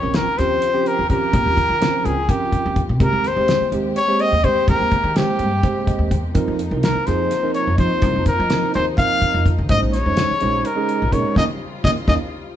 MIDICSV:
0, 0, Header, 1, 7, 480
1, 0, Start_track
1, 0, Tempo, 477707
1, 1341, Time_signature, 7, 3, 24, 8
1, 12621, End_track
2, 0, Start_track
2, 0, Title_t, "Trumpet"
2, 0, Program_c, 0, 56
2, 0, Note_on_c, 0, 73, 81
2, 156, Note_on_c, 0, 70, 93
2, 171, Note_off_c, 0, 73, 0
2, 382, Note_on_c, 0, 72, 92
2, 397, Note_off_c, 0, 70, 0
2, 879, Note_on_c, 0, 70, 80
2, 894, Note_off_c, 0, 72, 0
2, 1098, Note_off_c, 0, 70, 0
2, 1104, Note_on_c, 0, 70, 91
2, 2061, Note_on_c, 0, 68, 72
2, 2076, Note_off_c, 0, 70, 0
2, 2309, Note_on_c, 0, 67, 83
2, 2324, Note_off_c, 0, 68, 0
2, 2846, Note_off_c, 0, 67, 0
2, 3041, Note_on_c, 0, 70, 89
2, 3288, Note_on_c, 0, 72, 78
2, 3303, Note_off_c, 0, 70, 0
2, 3723, Note_off_c, 0, 72, 0
2, 3981, Note_on_c, 0, 73, 96
2, 4227, Note_on_c, 0, 75, 99
2, 4242, Note_off_c, 0, 73, 0
2, 4466, Note_on_c, 0, 72, 88
2, 4481, Note_off_c, 0, 75, 0
2, 4704, Note_off_c, 0, 72, 0
2, 4717, Note_on_c, 0, 70, 89
2, 5194, Note_on_c, 0, 67, 83
2, 5209, Note_off_c, 0, 70, 0
2, 6147, Note_off_c, 0, 67, 0
2, 6871, Note_on_c, 0, 70, 82
2, 7097, Note_on_c, 0, 72, 83
2, 7112, Note_off_c, 0, 70, 0
2, 7574, Note_off_c, 0, 72, 0
2, 7580, Note_on_c, 0, 73, 83
2, 7803, Note_off_c, 0, 73, 0
2, 7825, Note_on_c, 0, 72, 85
2, 8269, Note_off_c, 0, 72, 0
2, 8314, Note_on_c, 0, 70, 84
2, 8753, Note_off_c, 0, 70, 0
2, 8793, Note_on_c, 0, 72, 79
2, 8897, Note_off_c, 0, 72, 0
2, 9023, Note_on_c, 0, 77, 105
2, 9522, Note_off_c, 0, 77, 0
2, 9746, Note_on_c, 0, 75, 102
2, 9852, Note_off_c, 0, 75, 0
2, 9973, Note_on_c, 0, 73, 90
2, 10709, Note_on_c, 0, 70, 82
2, 10724, Note_off_c, 0, 73, 0
2, 11182, Note_on_c, 0, 73, 80
2, 11197, Note_off_c, 0, 70, 0
2, 11419, Note_off_c, 0, 73, 0
2, 11431, Note_on_c, 0, 75, 89
2, 11491, Note_off_c, 0, 75, 0
2, 11902, Note_on_c, 0, 75, 85
2, 11962, Note_off_c, 0, 75, 0
2, 12141, Note_on_c, 0, 75, 85
2, 12201, Note_off_c, 0, 75, 0
2, 12621, End_track
3, 0, Start_track
3, 0, Title_t, "Tine electric piano"
3, 0, Program_c, 1, 4
3, 25, Note_on_c, 1, 53, 66
3, 25, Note_on_c, 1, 70, 66
3, 26, Note_on_c, 1, 60, 60
3, 28, Note_on_c, 1, 61, 57
3, 278, Note_off_c, 1, 53, 0
3, 278, Note_off_c, 1, 70, 0
3, 279, Note_off_c, 1, 60, 0
3, 280, Note_off_c, 1, 61, 0
3, 385, Note_on_c, 1, 60, 63
3, 390, Note_on_c, 1, 67, 78
3, 391, Note_on_c, 1, 61, 62
3, 393, Note_on_c, 1, 53, 67
3, 639, Note_off_c, 1, 60, 0
3, 641, Note_off_c, 1, 61, 0
3, 641, Note_off_c, 1, 67, 0
3, 642, Note_off_c, 1, 53, 0
3, 739, Note_on_c, 1, 53, 71
3, 743, Note_on_c, 1, 60, 70
3, 743, Note_on_c, 1, 67, 89
3, 744, Note_on_c, 1, 61, 68
3, 995, Note_off_c, 1, 53, 0
3, 997, Note_off_c, 1, 60, 0
3, 997, Note_off_c, 1, 67, 0
3, 998, Note_off_c, 1, 61, 0
3, 1106, Note_on_c, 1, 60, 63
3, 1106, Note_on_c, 1, 61, 65
3, 1107, Note_on_c, 1, 53, 64
3, 1113, Note_on_c, 1, 67, 76
3, 1614, Note_off_c, 1, 61, 0
3, 1615, Note_off_c, 1, 53, 0
3, 1615, Note_off_c, 1, 60, 0
3, 1618, Note_off_c, 1, 67, 0
3, 1817, Note_on_c, 1, 53, 75
3, 1821, Note_on_c, 1, 60, 71
3, 1823, Note_on_c, 1, 61, 76
3, 1825, Note_on_c, 1, 70, 84
3, 2160, Note_off_c, 1, 53, 0
3, 2162, Note_off_c, 1, 60, 0
3, 2163, Note_off_c, 1, 61, 0
3, 2164, Note_off_c, 1, 70, 0
3, 2303, Note_on_c, 1, 53, 61
3, 2304, Note_on_c, 1, 60, 55
3, 2305, Note_on_c, 1, 61, 59
3, 2310, Note_on_c, 1, 70, 67
3, 2813, Note_off_c, 1, 53, 0
3, 2814, Note_off_c, 1, 60, 0
3, 2814, Note_off_c, 1, 61, 0
3, 2817, Note_off_c, 1, 70, 0
3, 3012, Note_on_c, 1, 56, 75
3, 3015, Note_on_c, 1, 67, 76
3, 3016, Note_on_c, 1, 70, 76
3, 3018, Note_on_c, 1, 60, 69
3, 3272, Note_off_c, 1, 56, 0
3, 3274, Note_off_c, 1, 67, 0
3, 3275, Note_off_c, 1, 60, 0
3, 3275, Note_off_c, 1, 70, 0
3, 3379, Note_on_c, 1, 67, 61
3, 3382, Note_on_c, 1, 56, 64
3, 3385, Note_on_c, 1, 60, 61
3, 3386, Note_on_c, 1, 72, 69
3, 3636, Note_off_c, 1, 67, 0
3, 3637, Note_off_c, 1, 56, 0
3, 3639, Note_off_c, 1, 60, 0
3, 3639, Note_off_c, 1, 72, 0
3, 3736, Note_on_c, 1, 56, 76
3, 3737, Note_on_c, 1, 60, 65
3, 3740, Note_on_c, 1, 72, 78
3, 3742, Note_on_c, 1, 67, 65
3, 3994, Note_off_c, 1, 56, 0
3, 3995, Note_off_c, 1, 60, 0
3, 3996, Note_off_c, 1, 72, 0
3, 3997, Note_off_c, 1, 67, 0
3, 4095, Note_on_c, 1, 56, 79
3, 4095, Note_on_c, 1, 67, 71
3, 4101, Note_on_c, 1, 72, 78
3, 4102, Note_on_c, 1, 60, 72
3, 4353, Note_off_c, 1, 67, 0
3, 4354, Note_off_c, 1, 56, 0
3, 4357, Note_off_c, 1, 60, 0
3, 4357, Note_off_c, 1, 72, 0
3, 4460, Note_on_c, 1, 60, 64
3, 4463, Note_on_c, 1, 67, 63
3, 4465, Note_on_c, 1, 56, 66
3, 4465, Note_on_c, 1, 72, 83
3, 4971, Note_off_c, 1, 60, 0
3, 4973, Note_off_c, 1, 67, 0
3, 4974, Note_off_c, 1, 56, 0
3, 4974, Note_off_c, 1, 72, 0
3, 5190, Note_on_c, 1, 56, 69
3, 5191, Note_on_c, 1, 60, 61
3, 5192, Note_on_c, 1, 72, 64
3, 5193, Note_on_c, 1, 67, 56
3, 5526, Note_off_c, 1, 56, 0
3, 5526, Note_off_c, 1, 60, 0
3, 5527, Note_off_c, 1, 72, 0
3, 5528, Note_off_c, 1, 67, 0
3, 5661, Note_on_c, 1, 60, 51
3, 5667, Note_on_c, 1, 56, 64
3, 5667, Note_on_c, 1, 72, 71
3, 5668, Note_on_c, 1, 67, 53
3, 5902, Note_on_c, 1, 75, 62
3, 6125, Note_off_c, 1, 75, 0
3, 6144, Note_on_c, 1, 79, 65
3, 6171, Note_off_c, 1, 60, 0
3, 6174, Note_off_c, 1, 56, 0
3, 6174, Note_off_c, 1, 72, 0
3, 6175, Note_off_c, 1, 67, 0
3, 6366, Note_off_c, 1, 79, 0
3, 6377, Note_on_c, 1, 53, 89
3, 6377, Note_on_c, 1, 60, 87
3, 6377, Note_on_c, 1, 63, 82
3, 6378, Note_on_c, 1, 70, 99
3, 6634, Note_off_c, 1, 53, 0
3, 6634, Note_off_c, 1, 60, 0
3, 6634, Note_off_c, 1, 63, 0
3, 6634, Note_off_c, 1, 70, 0
3, 6757, Note_on_c, 1, 53, 61
3, 6757, Note_on_c, 1, 60, 54
3, 6757, Note_on_c, 1, 63, 60
3, 6757, Note_on_c, 1, 70, 69
3, 7004, Note_off_c, 1, 53, 0
3, 7004, Note_off_c, 1, 60, 0
3, 7004, Note_off_c, 1, 63, 0
3, 7004, Note_off_c, 1, 70, 0
3, 7109, Note_on_c, 1, 53, 72
3, 7111, Note_on_c, 1, 60, 63
3, 7111, Note_on_c, 1, 63, 63
3, 7116, Note_on_c, 1, 68, 77
3, 7360, Note_off_c, 1, 53, 0
3, 7361, Note_off_c, 1, 60, 0
3, 7361, Note_off_c, 1, 63, 0
3, 7363, Note_off_c, 1, 68, 0
3, 7465, Note_on_c, 1, 60, 63
3, 7467, Note_on_c, 1, 53, 69
3, 7468, Note_on_c, 1, 70, 81
3, 7470, Note_on_c, 1, 63, 72
3, 7717, Note_off_c, 1, 60, 0
3, 7719, Note_off_c, 1, 53, 0
3, 7719, Note_off_c, 1, 70, 0
3, 7720, Note_off_c, 1, 63, 0
3, 7825, Note_on_c, 1, 63, 64
3, 7827, Note_on_c, 1, 60, 61
3, 7828, Note_on_c, 1, 53, 69
3, 7830, Note_on_c, 1, 72, 80
3, 8332, Note_off_c, 1, 63, 0
3, 8334, Note_off_c, 1, 53, 0
3, 8334, Note_off_c, 1, 60, 0
3, 8335, Note_off_c, 1, 72, 0
3, 8547, Note_on_c, 1, 60, 62
3, 8548, Note_on_c, 1, 53, 65
3, 8548, Note_on_c, 1, 70, 75
3, 8549, Note_on_c, 1, 63, 62
3, 8883, Note_off_c, 1, 60, 0
3, 8884, Note_off_c, 1, 53, 0
3, 8884, Note_off_c, 1, 63, 0
3, 8884, Note_off_c, 1, 70, 0
3, 9028, Note_on_c, 1, 53, 58
3, 9031, Note_on_c, 1, 60, 62
3, 9031, Note_on_c, 1, 63, 62
3, 9031, Note_on_c, 1, 70, 77
3, 9533, Note_off_c, 1, 53, 0
3, 9535, Note_off_c, 1, 60, 0
3, 9535, Note_off_c, 1, 63, 0
3, 9535, Note_off_c, 1, 70, 0
3, 9746, Note_on_c, 1, 56, 75
3, 9747, Note_on_c, 1, 61, 69
3, 9750, Note_on_c, 1, 63, 68
3, 9751, Note_on_c, 1, 72, 84
3, 9997, Note_off_c, 1, 56, 0
3, 9998, Note_off_c, 1, 61, 0
3, 9999, Note_off_c, 1, 63, 0
3, 9999, Note_off_c, 1, 72, 0
3, 10107, Note_on_c, 1, 56, 61
3, 10108, Note_on_c, 1, 61, 58
3, 10109, Note_on_c, 1, 72, 66
3, 10112, Note_on_c, 1, 63, 60
3, 10358, Note_off_c, 1, 56, 0
3, 10358, Note_off_c, 1, 61, 0
3, 10359, Note_off_c, 1, 72, 0
3, 10360, Note_off_c, 1, 63, 0
3, 10462, Note_on_c, 1, 56, 69
3, 10464, Note_on_c, 1, 61, 64
3, 10465, Note_on_c, 1, 72, 73
3, 10468, Note_on_c, 1, 63, 67
3, 10715, Note_off_c, 1, 56, 0
3, 10716, Note_off_c, 1, 61, 0
3, 10716, Note_off_c, 1, 72, 0
3, 10718, Note_off_c, 1, 63, 0
3, 10811, Note_on_c, 1, 56, 75
3, 10815, Note_on_c, 1, 61, 73
3, 10815, Note_on_c, 1, 63, 65
3, 10820, Note_on_c, 1, 68, 91
3, 11069, Note_off_c, 1, 56, 0
3, 11071, Note_off_c, 1, 61, 0
3, 11071, Note_off_c, 1, 63, 0
3, 11074, Note_off_c, 1, 68, 0
3, 11182, Note_on_c, 1, 56, 76
3, 11185, Note_on_c, 1, 61, 62
3, 11186, Note_on_c, 1, 63, 67
3, 11187, Note_on_c, 1, 70, 81
3, 11412, Note_off_c, 1, 61, 0
3, 11413, Note_off_c, 1, 63, 0
3, 11420, Note_off_c, 1, 56, 0
3, 11422, Note_off_c, 1, 70, 0
3, 11424, Note_on_c, 1, 58, 93
3, 11424, Note_on_c, 1, 61, 85
3, 11425, Note_on_c, 1, 63, 86
3, 11498, Note_off_c, 1, 58, 0
3, 11498, Note_off_c, 1, 61, 0
3, 11498, Note_off_c, 1, 63, 0
3, 11906, Note_on_c, 1, 63, 74
3, 11907, Note_on_c, 1, 61, 81
3, 11909, Note_on_c, 1, 58, 80
3, 11979, Note_off_c, 1, 63, 0
3, 11980, Note_off_c, 1, 61, 0
3, 11981, Note_off_c, 1, 58, 0
3, 12142, Note_on_c, 1, 61, 86
3, 12148, Note_on_c, 1, 58, 90
3, 12148, Note_on_c, 1, 63, 91
3, 12217, Note_off_c, 1, 61, 0
3, 12220, Note_off_c, 1, 58, 0
3, 12220, Note_off_c, 1, 63, 0
3, 12621, End_track
4, 0, Start_track
4, 0, Title_t, "String section"
4, 0, Program_c, 2, 48
4, 0, Note_on_c, 2, 49, 63
4, 0, Note_on_c, 2, 65, 61
4, 0, Note_on_c, 2, 67, 71
4, 2989, Note_off_c, 2, 49, 0
4, 2991, Note_off_c, 2, 65, 0
4, 2992, Note_off_c, 2, 67, 0
4, 3004, Note_on_c, 2, 67, 76
4, 3009, Note_on_c, 2, 56, 59
4, 3010, Note_on_c, 2, 48, 70
4, 3010, Note_on_c, 2, 58, 68
4, 6338, Note_off_c, 2, 67, 0
4, 6340, Note_off_c, 2, 56, 0
4, 6341, Note_off_c, 2, 58, 0
4, 6385, Note_on_c, 2, 63, 77
4, 6391, Note_on_c, 2, 58, 59
4, 6392, Note_on_c, 2, 53, 60
4, 9692, Note_off_c, 2, 48, 0
4, 9710, Note_off_c, 2, 53, 0
4, 9710, Note_off_c, 2, 58, 0
4, 9741, Note_on_c, 2, 48, 67
4, 9744, Note_on_c, 2, 49, 69
4, 9745, Note_on_c, 2, 56, 61
4, 11379, Note_off_c, 2, 63, 0
4, 11404, Note_off_c, 2, 56, 0
4, 11424, Note_on_c, 2, 65, 77
4, 11427, Note_on_c, 2, 55, 60
4, 12621, Note_off_c, 2, 48, 0
4, 12621, Note_off_c, 2, 49, 0
4, 12621, Note_off_c, 2, 55, 0
4, 12621, Note_off_c, 2, 65, 0
4, 12621, End_track
5, 0, Start_track
5, 0, Title_t, "Upright bass"
5, 0, Program_c, 3, 32
5, 27, Note_on_c, 3, 34, 79
5, 219, Note_off_c, 3, 34, 0
5, 386, Note_on_c, 3, 39, 79
5, 578, Note_off_c, 3, 39, 0
5, 994, Note_on_c, 3, 39, 75
5, 1086, Note_off_c, 3, 39, 0
5, 1101, Note_on_c, 3, 51, 66
5, 1198, Note_off_c, 3, 51, 0
5, 1340, Note_on_c, 3, 34, 93
5, 1438, Note_off_c, 3, 34, 0
5, 1466, Note_on_c, 3, 39, 75
5, 1658, Note_off_c, 3, 39, 0
5, 1700, Note_on_c, 3, 51, 81
5, 1895, Note_off_c, 3, 51, 0
5, 2060, Note_on_c, 3, 37, 84
5, 2255, Note_off_c, 3, 37, 0
5, 2667, Note_on_c, 3, 39, 79
5, 2906, Note_on_c, 3, 48, 79
5, 2921, Note_off_c, 3, 39, 0
5, 3021, Note_on_c, 3, 39, 84
5, 3036, Note_off_c, 3, 48, 0
5, 3119, Note_off_c, 3, 39, 0
5, 3141, Note_on_c, 3, 39, 82
5, 3335, Note_off_c, 3, 39, 0
5, 3381, Note_on_c, 3, 39, 82
5, 3575, Note_off_c, 3, 39, 0
5, 3737, Note_on_c, 3, 39, 83
5, 3933, Note_off_c, 3, 39, 0
5, 4339, Note_on_c, 3, 39, 78
5, 4437, Note_off_c, 3, 39, 0
5, 4464, Note_on_c, 3, 51, 72
5, 4560, Note_off_c, 3, 51, 0
5, 4703, Note_on_c, 3, 39, 94
5, 4799, Note_off_c, 3, 39, 0
5, 4823, Note_on_c, 3, 39, 70
5, 5016, Note_off_c, 3, 39, 0
5, 5060, Note_on_c, 3, 51, 83
5, 5254, Note_off_c, 3, 51, 0
5, 5413, Note_on_c, 3, 43, 81
5, 5610, Note_off_c, 3, 43, 0
5, 6014, Note_on_c, 3, 39, 70
5, 6263, Note_off_c, 3, 39, 0
5, 6263, Note_on_c, 3, 40, 77
5, 6384, Note_off_c, 3, 40, 0
5, 6384, Note_on_c, 3, 41, 87
5, 6480, Note_off_c, 3, 41, 0
5, 6508, Note_on_c, 3, 41, 73
5, 6699, Note_off_c, 3, 41, 0
5, 6744, Note_on_c, 3, 36, 81
5, 6936, Note_off_c, 3, 36, 0
5, 7110, Note_on_c, 3, 41, 81
5, 7300, Note_off_c, 3, 41, 0
5, 7710, Note_on_c, 3, 41, 71
5, 7803, Note_off_c, 3, 41, 0
5, 7823, Note_on_c, 3, 53, 70
5, 7919, Note_off_c, 3, 53, 0
5, 8063, Note_on_c, 3, 36, 97
5, 8159, Note_off_c, 3, 36, 0
5, 8196, Note_on_c, 3, 41, 74
5, 8383, Note_off_c, 3, 41, 0
5, 8435, Note_on_c, 3, 53, 89
5, 8623, Note_off_c, 3, 53, 0
5, 8796, Note_on_c, 3, 39, 96
5, 8983, Note_off_c, 3, 39, 0
5, 9388, Note_on_c, 3, 41, 76
5, 9629, Note_on_c, 3, 51, 77
5, 9644, Note_off_c, 3, 41, 0
5, 9736, Note_on_c, 3, 34, 91
5, 9751, Note_off_c, 3, 51, 0
5, 9834, Note_off_c, 3, 34, 0
5, 9871, Note_on_c, 3, 34, 72
5, 10060, Note_off_c, 3, 34, 0
5, 10106, Note_on_c, 3, 41, 83
5, 10297, Note_off_c, 3, 41, 0
5, 10473, Note_on_c, 3, 34, 79
5, 10661, Note_off_c, 3, 34, 0
5, 11072, Note_on_c, 3, 34, 79
5, 11163, Note_off_c, 3, 34, 0
5, 11180, Note_on_c, 3, 46, 73
5, 11276, Note_off_c, 3, 46, 0
5, 11417, Note_on_c, 3, 39, 88
5, 11506, Note_off_c, 3, 39, 0
5, 11901, Note_on_c, 3, 39, 89
5, 11988, Note_off_c, 3, 39, 0
5, 12135, Note_on_c, 3, 39, 84
5, 12225, Note_off_c, 3, 39, 0
5, 12621, End_track
6, 0, Start_track
6, 0, Title_t, "Muted upright bass strokes"
6, 270, Note_on_c, 9, 29, 32
6, 371, Note_off_c, 9, 29, 0
6, 3624, Note_on_c, 9, 29, 33
6, 3724, Note_off_c, 9, 29, 0
6, 6984, Note_on_c, 9, 29, 31
6, 7084, Note_off_c, 9, 29, 0
6, 10354, Note_on_c, 9, 29, 31
6, 10455, Note_off_c, 9, 29, 0
6, 12621, End_track
7, 0, Start_track
7, 0, Title_t, "Drums"
7, 138, Note_on_c, 9, 42, 85
7, 144, Note_on_c, 9, 38, 103
7, 239, Note_off_c, 9, 42, 0
7, 245, Note_off_c, 9, 38, 0
7, 387, Note_on_c, 9, 42, 55
7, 393, Note_on_c, 9, 38, 32
7, 487, Note_off_c, 9, 42, 0
7, 493, Note_off_c, 9, 38, 0
7, 622, Note_on_c, 9, 42, 78
7, 722, Note_off_c, 9, 42, 0
7, 865, Note_on_c, 9, 42, 49
7, 966, Note_off_c, 9, 42, 0
7, 1102, Note_on_c, 9, 42, 62
7, 1103, Note_on_c, 9, 36, 68
7, 1203, Note_off_c, 9, 42, 0
7, 1204, Note_off_c, 9, 36, 0
7, 1339, Note_on_c, 9, 42, 78
7, 1341, Note_on_c, 9, 36, 93
7, 1440, Note_off_c, 9, 42, 0
7, 1441, Note_off_c, 9, 36, 0
7, 1580, Note_on_c, 9, 36, 72
7, 1586, Note_on_c, 9, 42, 58
7, 1681, Note_off_c, 9, 36, 0
7, 1686, Note_off_c, 9, 42, 0
7, 1825, Note_on_c, 9, 42, 84
7, 1831, Note_on_c, 9, 38, 111
7, 1926, Note_off_c, 9, 42, 0
7, 1932, Note_off_c, 9, 38, 0
7, 2064, Note_on_c, 9, 42, 58
7, 2165, Note_off_c, 9, 42, 0
7, 2299, Note_on_c, 9, 36, 97
7, 2303, Note_on_c, 9, 42, 81
7, 2399, Note_off_c, 9, 36, 0
7, 2404, Note_off_c, 9, 42, 0
7, 2536, Note_on_c, 9, 36, 66
7, 2537, Note_on_c, 9, 42, 56
7, 2637, Note_off_c, 9, 36, 0
7, 2638, Note_off_c, 9, 42, 0
7, 2773, Note_on_c, 9, 42, 57
7, 2775, Note_on_c, 9, 36, 73
7, 2874, Note_off_c, 9, 42, 0
7, 2876, Note_off_c, 9, 36, 0
7, 3016, Note_on_c, 9, 42, 77
7, 3017, Note_on_c, 9, 36, 104
7, 3116, Note_off_c, 9, 42, 0
7, 3117, Note_off_c, 9, 36, 0
7, 3259, Note_on_c, 9, 42, 56
7, 3265, Note_on_c, 9, 38, 32
7, 3359, Note_off_c, 9, 42, 0
7, 3365, Note_off_c, 9, 38, 0
7, 3498, Note_on_c, 9, 42, 84
7, 3504, Note_on_c, 9, 38, 110
7, 3598, Note_off_c, 9, 42, 0
7, 3604, Note_off_c, 9, 38, 0
7, 3741, Note_on_c, 9, 42, 53
7, 3841, Note_off_c, 9, 42, 0
7, 3980, Note_on_c, 9, 42, 73
7, 4080, Note_off_c, 9, 42, 0
7, 4214, Note_on_c, 9, 42, 51
7, 4314, Note_off_c, 9, 42, 0
7, 4461, Note_on_c, 9, 36, 76
7, 4462, Note_on_c, 9, 42, 53
7, 4562, Note_off_c, 9, 36, 0
7, 4562, Note_off_c, 9, 42, 0
7, 4701, Note_on_c, 9, 36, 96
7, 4701, Note_on_c, 9, 42, 74
7, 4801, Note_off_c, 9, 42, 0
7, 4802, Note_off_c, 9, 36, 0
7, 4938, Note_on_c, 9, 42, 54
7, 4942, Note_on_c, 9, 36, 76
7, 5039, Note_off_c, 9, 42, 0
7, 5042, Note_off_c, 9, 36, 0
7, 5184, Note_on_c, 9, 42, 80
7, 5190, Note_on_c, 9, 38, 110
7, 5284, Note_off_c, 9, 42, 0
7, 5290, Note_off_c, 9, 38, 0
7, 5418, Note_on_c, 9, 42, 52
7, 5518, Note_off_c, 9, 42, 0
7, 5661, Note_on_c, 9, 42, 75
7, 5662, Note_on_c, 9, 36, 98
7, 5761, Note_off_c, 9, 42, 0
7, 5762, Note_off_c, 9, 36, 0
7, 5902, Note_on_c, 9, 36, 75
7, 5904, Note_on_c, 9, 42, 55
7, 6002, Note_off_c, 9, 36, 0
7, 6005, Note_off_c, 9, 42, 0
7, 6141, Note_on_c, 9, 36, 75
7, 6143, Note_on_c, 9, 42, 60
7, 6242, Note_off_c, 9, 36, 0
7, 6244, Note_off_c, 9, 42, 0
7, 6379, Note_on_c, 9, 42, 82
7, 6382, Note_on_c, 9, 36, 93
7, 6480, Note_off_c, 9, 42, 0
7, 6483, Note_off_c, 9, 36, 0
7, 6624, Note_on_c, 9, 42, 65
7, 6724, Note_off_c, 9, 42, 0
7, 6863, Note_on_c, 9, 42, 90
7, 6869, Note_on_c, 9, 38, 113
7, 6964, Note_off_c, 9, 42, 0
7, 6970, Note_off_c, 9, 38, 0
7, 7101, Note_on_c, 9, 42, 56
7, 7107, Note_on_c, 9, 38, 28
7, 7202, Note_off_c, 9, 42, 0
7, 7208, Note_off_c, 9, 38, 0
7, 7344, Note_on_c, 9, 42, 82
7, 7350, Note_on_c, 9, 38, 35
7, 7445, Note_off_c, 9, 42, 0
7, 7451, Note_off_c, 9, 38, 0
7, 7581, Note_on_c, 9, 42, 55
7, 7681, Note_off_c, 9, 42, 0
7, 7819, Note_on_c, 9, 42, 54
7, 7820, Note_on_c, 9, 36, 78
7, 7919, Note_off_c, 9, 42, 0
7, 7921, Note_off_c, 9, 36, 0
7, 8056, Note_on_c, 9, 42, 73
7, 8061, Note_on_c, 9, 36, 103
7, 8157, Note_off_c, 9, 42, 0
7, 8161, Note_off_c, 9, 36, 0
7, 8297, Note_on_c, 9, 42, 55
7, 8300, Note_on_c, 9, 36, 79
7, 8303, Note_on_c, 9, 38, 33
7, 8397, Note_off_c, 9, 42, 0
7, 8400, Note_off_c, 9, 36, 0
7, 8403, Note_off_c, 9, 38, 0
7, 8539, Note_on_c, 9, 42, 79
7, 8545, Note_on_c, 9, 38, 106
7, 8639, Note_off_c, 9, 42, 0
7, 8645, Note_off_c, 9, 38, 0
7, 8781, Note_on_c, 9, 42, 51
7, 8882, Note_off_c, 9, 42, 0
7, 9022, Note_on_c, 9, 36, 101
7, 9027, Note_on_c, 9, 42, 78
7, 9122, Note_off_c, 9, 36, 0
7, 9128, Note_off_c, 9, 42, 0
7, 9262, Note_on_c, 9, 36, 73
7, 9266, Note_on_c, 9, 42, 53
7, 9363, Note_off_c, 9, 36, 0
7, 9367, Note_off_c, 9, 42, 0
7, 9501, Note_on_c, 9, 36, 73
7, 9506, Note_on_c, 9, 42, 58
7, 9602, Note_off_c, 9, 36, 0
7, 9607, Note_off_c, 9, 42, 0
7, 9736, Note_on_c, 9, 42, 79
7, 9739, Note_on_c, 9, 36, 106
7, 9837, Note_off_c, 9, 42, 0
7, 9840, Note_off_c, 9, 36, 0
7, 9982, Note_on_c, 9, 42, 61
7, 9988, Note_on_c, 9, 38, 32
7, 10082, Note_off_c, 9, 42, 0
7, 10088, Note_off_c, 9, 38, 0
7, 10215, Note_on_c, 9, 42, 93
7, 10221, Note_on_c, 9, 38, 113
7, 10316, Note_off_c, 9, 42, 0
7, 10322, Note_off_c, 9, 38, 0
7, 10454, Note_on_c, 9, 42, 58
7, 10554, Note_off_c, 9, 42, 0
7, 10700, Note_on_c, 9, 42, 84
7, 10800, Note_off_c, 9, 42, 0
7, 10939, Note_on_c, 9, 42, 58
7, 11040, Note_off_c, 9, 42, 0
7, 11178, Note_on_c, 9, 36, 75
7, 11181, Note_on_c, 9, 42, 62
7, 11278, Note_off_c, 9, 36, 0
7, 11281, Note_off_c, 9, 42, 0
7, 11417, Note_on_c, 9, 36, 81
7, 11424, Note_on_c, 9, 38, 94
7, 11518, Note_off_c, 9, 36, 0
7, 11525, Note_off_c, 9, 38, 0
7, 11898, Note_on_c, 9, 36, 93
7, 11903, Note_on_c, 9, 38, 94
7, 11998, Note_off_c, 9, 36, 0
7, 12004, Note_off_c, 9, 38, 0
7, 12136, Note_on_c, 9, 36, 89
7, 12137, Note_on_c, 9, 38, 78
7, 12236, Note_off_c, 9, 36, 0
7, 12237, Note_off_c, 9, 38, 0
7, 12621, End_track
0, 0, End_of_file